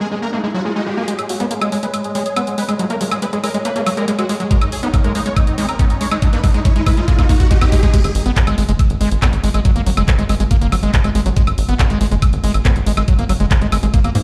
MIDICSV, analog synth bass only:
0, 0, Header, 1, 2, 480
1, 0, Start_track
1, 0, Key_signature, 5, "minor"
1, 0, Tempo, 428571
1, 1208, Time_signature, 4, 2, 24, 8
1, 15939, End_track
2, 0, Start_track
2, 0, Title_t, "Analog synth bass"
2, 0, Program_c, 0, 38
2, 9008, Note_on_c, 0, 32, 91
2, 9081, Note_off_c, 0, 32, 0
2, 9128, Note_on_c, 0, 32, 99
2, 9201, Note_off_c, 0, 32, 0
2, 9248, Note_on_c, 0, 32, 93
2, 9321, Note_off_c, 0, 32, 0
2, 9488, Note_on_c, 0, 32, 92
2, 9561, Note_off_c, 0, 32, 0
2, 9608, Note_on_c, 0, 32, 100
2, 9681, Note_off_c, 0, 32, 0
2, 9728, Note_on_c, 0, 30, 93
2, 9801, Note_off_c, 0, 30, 0
2, 9968, Note_on_c, 0, 32, 90
2, 10041, Note_off_c, 0, 32, 0
2, 10088, Note_on_c, 0, 32, 102
2, 10161, Note_off_c, 0, 32, 0
2, 10208, Note_on_c, 0, 32, 92
2, 10281, Note_off_c, 0, 32, 0
2, 10449, Note_on_c, 0, 32, 90
2, 10522, Note_off_c, 0, 32, 0
2, 10569, Note_on_c, 0, 32, 98
2, 10642, Note_off_c, 0, 32, 0
2, 10689, Note_on_c, 0, 32, 93
2, 10762, Note_off_c, 0, 32, 0
2, 10929, Note_on_c, 0, 32, 92
2, 11002, Note_off_c, 0, 32, 0
2, 11048, Note_on_c, 0, 32, 102
2, 11121, Note_off_c, 0, 32, 0
2, 11168, Note_on_c, 0, 30, 97
2, 11241, Note_off_c, 0, 30, 0
2, 11408, Note_on_c, 0, 32, 90
2, 11481, Note_off_c, 0, 32, 0
2, 11528, Note_on_c, 0, 32, 102
2, 11601, Note_off_c, 0, 32, 0
2, 11648, Note_on_c, 0, 32, 91
2, 11721, Note_off_c, 0, 32, 0
2, 11888, Note_on_c, 0, 30, 92
2, 11961, Note_off_c, 0, 30, 0
2, 12008, Note_on_c, 0, 32, 101
2, 12081, Note_off_c, 0, 32, 0
2, 12128, Note_on_c, 0, 32, 95
2, 12201, Note_off_c, 0, 32, 0
2, 12368, Note_on_c, 0, 32, 90
2, 12441, Note_off_c, 0, 32, 0
2, 12488, Note_on_c, 0, 32, 100
2, 12561, Note_off_c, 0, 32, 0
2, 12608, Note_on_c, 0, 32, 93
2, 12681, Note_off_c, 0, 32, 0
2, 12849, Note_on_c, 0, 32, 91
2, 12922, Note_off_c, 0, 32, 0
2, 12968, Note_on_c, 0, 32, 99
2, 13041, Note_off_c, 0, 32, 0
2, 13088, Note_on_c, 0, 32, 91
2, 13161, Note_off_c, 0, 32, 0
2, 13329, Note_on_c, 0, 32, 90
2, 13402, Note_off_c, 0, 32, 0
2, 13449, Note_on_c, 0, 32, 102
2, 13522, Note_off_c, 0, 32, 0
2, 13569, Note_on_c, 0, 30, 94
2, 13642, Note_off_c, 0, 30, 0
2, 13809, Note_on_c, 0, 32, 89
2, 13882, Note_off_c, 0, 32, 0
2, 13929, Note_on_c, 0, 32, 99
2, 14002, Note_off_c, 0, 32, 0
2, 14049, Note_on_c, 0, 32, 91
2, 14122, Note_off_c, 0, 32, 0
2, 14289, Note_on_c, 0, 32, 88
2, 14362, Note_off_c, 0, 32, 0
2, 14409, Note_on_c, 0, 32, 101
2, 14482, Note_off_c, 0, 32, 0
2, 14529, Note_on_c, 0, 32, 92
2, 14602, Note_off_c, 0, 32, 0
2, 14769, Note_on_c, 0, 32, 91
2, 14842, Note_off_c, 0, 32, 0
2, 14888, Note_on_c, 0, 32, 99
2, 14961, Note_off_c, 0, 32, 0
2, 15009, Note_on_c, 0, 30, 94
2, 15082, Note_off_c, 0, 30, 0
2, 15249, Note_on_c, 0, 32, 90
2, 15322, Note_off_c, 0, 32, 0
2, 15369, Note_on_c, 0, 32, 103
2, 15442, Note_off_c, 0, 32, 0
2, 15489, Note_on_c, 0, 32, 95
2, 15562, Note_off_c, 0, 32, 0
2, 15729, Note_on_c, 0, 32, 89
2, 15802, Note_off_c, 0, 32, 0
2, 15848, Note_on_c, 0, 44, 99
2, 15921, Note_off_c, 0, 44, 0
2, 15939, End_track
0, 0, End_of_file